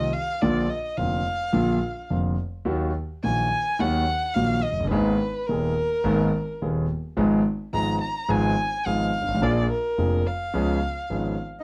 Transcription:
Already playing: D#5
0.13 F5
0.41 A#1 A#2 D3 F3 A#3 F4 D5
0.70 D#5
0.97 F1 F2 D3 F3 A#3 F4 F5
1.53 A#1 A#2 D3 F3 A#3 F4
2.10 F1 F2 D3 F3 A#3 F4
2.65 D#2 D#3 F#3 A#3 F#4
3.24 A#1 A#2 D#3 F#3 A#3 F#4 G#5
3.79 D#2 D#3 F#3 A#3 F#4 F#5
4.34 A#1 A#2 D#3 F#3 A#3 F#4 F5
4.63 D#5
4.72 F1
4.80 F#1
4.84 G1
4.90 G#1 G#2 D#3 A#3 B3 G#4 B4
5.47 D#1 D#2 D#3 A#3 B3 G#4 A#4
6.04 G#1 G#2 D#3 A#3 B3 G#4
6.62 D#1 D#2 D#3 A#3 B3 G#4
7.17 G#1 G#2 F3 G#3 B3 G#4
7.73 G#1 G#2 F3 G#3 B3 G#4 A#5
8.01 A#5
8.29 G#1 G#2 F3 G#3 B3 G#4 G#5
8.86 G#1 G#2 F3 G#3 B3 G#4 F5
9.21 G1
9.28 G#1
9.35 A1
9.42 A#1 A#2 F3 A#3 D4 G#4 D5
9.71 A#4
9.98 F1 F2 F3 A#3 D4 G#4
10.27 F5
10.54 C#2 C#3 F3 B3 C#4 G#4
11.10 G#1 G#2 F3 B3 C#4 G#4
11.60 D#4 D#5

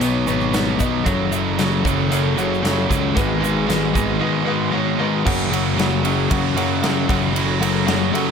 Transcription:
Already playing: B1
0.01 B2 F#3 B3 D#4 B4 C#5, closed hi-hat, shaker
0.26 G#1 B2 F#3 B3 D#4 B4 C#5, shaker
0.40 shaker
0.53 B2 F#3 B3 D#4 B4 C#5, snare, closed hi-hat, shaker
0.80 B1 B2 F#3 B3 D#4 B4 D#5, kick, shaker
1.04 F#1 F#2 C#3 F#3 C#4 F#4 A4 C#5 F#5, kick, closed hi-hat, shaker
1.31 F#2 C#3 F#3 F#4 A4 E5, shaker
1.58 F#2 C#3 F#3 F#4 A4 C#5, snare, closed hi-hat, shaker
1.84 F#1 F#2 C#3 F#3 F#4 A4 C#5, kick, shaker
2.10 F#2 C#3 F#3 F#4 A4 C#5, closed hi-hat, shaker
2.37 F#2 C#3 F#3 F#4 A4 C#5, shaker
2.54 shaker
2.62 F#2 C#3 F#3 F#4 A4 C#5, snare, closed hi-hat, shaker
2.89 C#2 F#2 C#3 F#3 F#4 A4 C#5, kick, shaker
3.14 G#1 G#2 D#3 G#3 B3 F#4 G#4 B4 F#5, kick, closed hi-hat, shaker
3.41 G#2 D#3 G#3 F#4 G#4 B4, shaker
3.66 G#2 D#3 G#3 F#4 G#4 B4, closed hi-hat
3.70 snare, shaker
3.94 G#1 G#2 D#3 G#3 F#4 G#4 B4, kick, shaker
4.19 G#2 D#3 G#3 F#4 G#4 B4
4.45 G#2 D#3 G#3 F#4 G#4 B4
4.71 G#2 D#3 G#3 F#4 G#4 C#5
4.98 G#2 D#3 G#3 F#4 G#4 B4
5.24 F#1 F#2 C#3 F#3 A#3 G#4 A#4 C#5 F#5, kick, crash
5.50 F#2 C#3 F#3 G#4 A#4 C#5 F#5, ride
5.77 F#2 C#3 F#3 G#4 A#4 C#5 F#5, snare, ride
6.04 F#2 C#3 F#3 G#4 A#4 C#5 F#5, ride
6.29 F#2 C#3 F#3 G#4 A#4 C#5 F#5, kick, ride
6.55 F#2 C#3 F#3 G#4 A#4 C#5 F#5, ride
6.82 F#2 C#3 F#3 G#4 A#4 C#5 F#5, snare, ride
7.08 F#1 F#2 C#3 F#3 C#4 F#4 A4 C#5 F#5, kick, ride
7.35 F#2 C#3 F#3, ride
7.60 F#2 C#3 F#3 F#4 A4 C#5 F#5, ride
7.86 F#2 C#3 F#3 F#4 A4 C#5 F#5, snare, ride
8.13 F#2 C#3 F#3 F#4 A4 C#5 F#5, ride

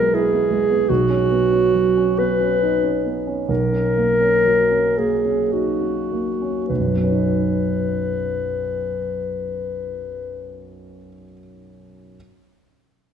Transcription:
Already playing: B1 F#3 G#3 B3 A#4
0.14 E4 G#4
0.33 B3
0.51 G#3
0.70 B3
0.89 B1 F#4
1.10 C#4
1.31 B3
1.53 C#4
1.74 F#3
1.97 C#4
2.19 B3 B4
2.40 C#4
2.63 D#4
2.83 C#4
3.06 B3
3.27 C#4
3.49 B1 A#4
3.72 C#4
3.97 A#3
4.21 C#4
4.45 F#3
4.71 C#4
4.98 A#3 G#4
5.25 C#4
5.52 D#4 F#4
5.81 C#4
6.12 A#3
6.42 C#4
6.68 B1 B4
6.78 F#2
6.86 F#3
6.95 B3
7.03 C#4
7.12 D#4

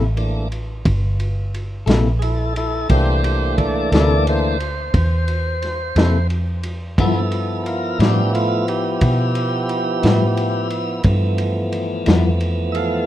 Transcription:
Already playing: A1
0.17 E3 A3 A#3 D4, ride
0.52 ride
0.85 G1, kick, ride
1.20 ride
1.54 ride
1.86 A#1 C3 A#3 E4 A4, snare, ride
2.19 E4 G#4, ride
2.24 A4
2.56 E4 A4, ride
2.89 C2 E3 A3 A#3 D4 G4 C5, kick, ride
3.24 G4 C5, ride
3.57 A4 D5, kick, ride
3.92 D2 C3 A#3 E4 A4 D5, snare, ride
4.27 E3 A3 A#3 D4 C5, ride
4.60 ride
4.94 E2, kick, ride
5.28 ride
5.62 snare, ride
5.96 F2 C3 A#3 E4 A4, snare, ride
6.30 ride
6.63 ride
6.98 G2 F3 B3 E4 A4, kick, ride
7.32 ride
7.63 F4 A4 A#4, ride
7.99 G2 A2 F3 B3 D4 E4 G4, snare, ride
8.34 A3 F4, ride
8.68 G4, ride
9.01 B2, kick, ride
9.35 ride
9.69 ride
10.03 G2 A2 F3 B3 E4, snare, ride
10.37 ride
10.70 ride
11.04 G2 E3 F3 A3 B3, kick, ride
11.38 ride
11.72 ride
12.06 F2 G2 F3 B3 E4, snare, ride
12.40 ride
12.72 A4 E5 F5, ride

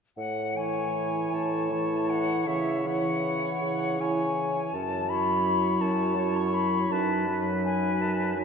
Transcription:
0.17 A2 F#5
0.56 E3 E4 C#5 G#5
1.32 A2 A5
1.72 E3 E4 C#5
2.09 F#5
2.46 C#3 E3 E4 C#5 E5
2.86 E3 E4 C#5 F#5
3.62 C#3 F#5
4.00 E3 E4 C#5 G#5
4.74 F#2 A5
5.09 F#3 E4 C#5 B5
5.81 F#2 A5
6.16 F#3 E4 C#5
6.36 C#6
6.54 B5
6.90 F#2 F#3 D#4 B4 A5
7.27 F#3 D#4 B4
7.64 G#5
8.01 F#2 A5
8.37 F#3 D#4 B4

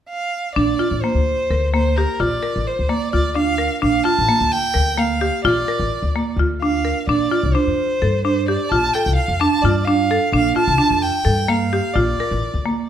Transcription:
0.09 F5
0.55 A#1 D4 D5
0.79 F4
0.91 A1
1.02 A#3 C5
1.14 D2
1.50 D2 A#4
1.73 A#3 C5
1.96 G4 A#4
2.20 A#1 F4 D5
2.43 A#4
2.56 A1
2.67 C5
2.79 D2
2.89 A#3 D5
3.13 D2 F4 D5
3.35 D4 F5
3.58 A#4
3.82 A#1 D4 F5
4.04 F4 A5
4.19 A1
4.29 A#3
4.41 D2
4.52 G5
4.74 D2 A#4
4.98 A#3 F5
5.21 G4
5.44 A#1 F4 D5
5.68 A#4
5.79 A1
6.03 D2
6.16 A#3
6.36 D2 F4
6.62 D4 F5
6.85 A#4
7.08 A#1 D4 D5
7.31 F4
7.43 C2
7.54 D4 C5
7.67 F2
8.02 G2 A4
8.24 D4 C5
8.48 G4 D5
8.69 A#1 F4 A5
8.94 A4 G5
9.06 C2
9.16 F5
9.28 F2
9.40 D4 A5
9.62 G2 F4 D5
9.85 D4 F5
10.11 A4
10.32 A#1 D4 F5
10.56 F4 A5
10.68 C2
10.78 D4
10.91 F2
11.02 G5
11.25 G2 A4
11.48 A#3 F5
11.73 G4
11.94 A#1 F4 D5
12.20 A#4
12.31 A1
12.54 D2
12.66 A#3

